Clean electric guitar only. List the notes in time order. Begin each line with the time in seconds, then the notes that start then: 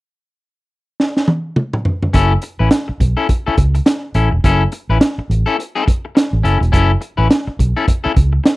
2.13 C#4 E4 A4
2.43 muted clean electric guitar stroke
2.59 C#4 E4 B4
2.88 muted clean electric guitar stroke
3.17 C#4 E4 A4
3.29 muted clean electric guitar stroke
3.46 C#4 E4 A4
3.75 muted clean electric guitar stroke
3.86 muted clean electric guitar stroke
4.15 C#4 E4 A4
4.31 muted clean electric guitar stroke
4.44 C#4 E4 A4
4.72 muted clean electric guitar stroke
4.90 C#4 E4 B4
5.19 muted clean electric guitar stroke
5.46 C#4 E4 A4
5.59 muted clean electric guitar stroke
5.75 C#4 E4 A4
5.86 muted clean electric guitar stroke
6.05 muted clean electric guitar stroke
6.15 muted clean electric guitar stroke
6.43 C#4 E4 A4
6.60 muted clean electric guitar stroke
6.72 C#4 E4 A4
7.01 muted clean electric guitar stroke
7.17 C#4 E4 B4
7.30 muted clean electric guitar stroke
7.47 muted clean electric guitar stroke
7.77 C#4 E4 A4
7.87 muted clean electric guitar stroke
8.04 C#4 E4 A4
8.14 muted clean electric guitar stroke
8.33 muted clean electric guitar stroke
8.44 muted clean electric guitar stroke